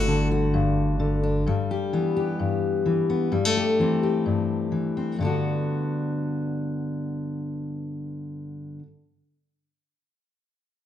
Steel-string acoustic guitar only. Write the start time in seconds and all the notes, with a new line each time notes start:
Already playing: G2 A3 F#4
0.08 D3 D4
0.31 F#4
0.54 G2
1.00 D3
1.23 D4
1.46 G2 G3
1.71 G4
1.93 E3 B3
2.17 G4
2.39 G2
2.86 E3
3.10 B3
3.32 G2 G3
3.45 A3
3.57 G4
3.79 E3 C4
4.03 G4
4.26 G2
4.72 E3
4.97 C4
5.18 G2 D3 B3
5.25 D4 F#4